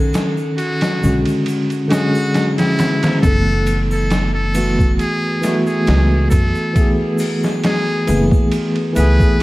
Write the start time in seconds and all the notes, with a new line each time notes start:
Already playing: D#3 C#4 A4
0.14 snare, ride, shaker
0.38 shaker
0.58 F#4, ride, shaker
0.81 snare, ride, shaker
1.01 B1 D3 G#3 C#4 F#4, shaker
1.25 ride, shaker
1.46 ride, shaker
1.70 ride, shaker
1.88 D3 G#3 F#4, snare, ride
1.92 C#4 G#4, shaker
2.15 triangle, shaker
2.34 snare, ride, shaker
2.58 E4, snare, ride, shaker
2.79 snare, ride, shaker
3.03 snare, ride, shaker
3.20 F#1 E3 A3 A4, kick, ride, shaker
3.25 B3 A4
3.66 ride, shaker
3.91 A4, triangle, shaker
4.11 snare, ride, shaker
4.34 A4
4.54 E3 A3 B3 F#4, ride, triangle, shaker
4.79 kick, shaker
4.99 G#4, ride, shaker
5.41 E3 A3, snare, ride, shaker
5.45 B3 F#4
5.67 G#4, shaker
5.87 C#2, snare, ride, shaker
6.30 F#2 A4, kick, ride, shaker
6.55 shaker
6.73 E3 A3, kick, ride, shaker
6.78 B3 G#4
7.18 open hi-hat, shaker
7.43 snare, triangle, shaker
7.64 G#4, snare, ride, shaker
8.07 F#1 E3 A3 B3 G#4, ride, triangle, shaker
8.31 kick, shaker
8.52 ride, shaker
8.76 ride
8.93 C#2 E3 A3 B4, ride, shaker
8.97 B3 G#4
9.20 kick, shaker